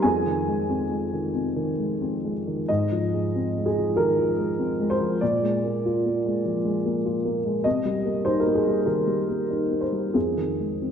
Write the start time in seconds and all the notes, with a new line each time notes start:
0.02 F2 G#4 G#5
0.26 D#3
0.48 G#3
0.69 C4
0.91 G#3
1.13 D#3
1.34 C3
1.56 D#3
1.78 G#3
2.01 C4
2.24 G#3
2.47 D#3
2.68 G#2 D#5
2.92 F3
3.14 G#3
3.35 C4
3.58 G#3
3.66 G#4
3.78 F3
3.96 D#3 A#4
4.18 F3
4.38 G#3
4.59 C4
4.80 G#3
4.90 C5
5.00 F3
5.21 A#2 D5
5.43 G#3
5.64 A#3
5.85 F4
6.06 A#3
6.26 G#3
6.45 F3
6.65 G#3
6.85 A#3
7.05 F4
7.25 A#3
7.45 G#3
7.64 C3 D#5
7.85 G3
8.05 A#3
8.25 D#4 C5
8.40 A#4
8.46 A#3
8.55 G#4
8.67 G3
8.86 D#3 A#4
9.07 G3
9.29 A#3
9.50 D#4
9.71 A#3
9.81 C5
9.92 G3
10.14 F2 G#4
10.37 D#3
10.60 G#3
10.82 C4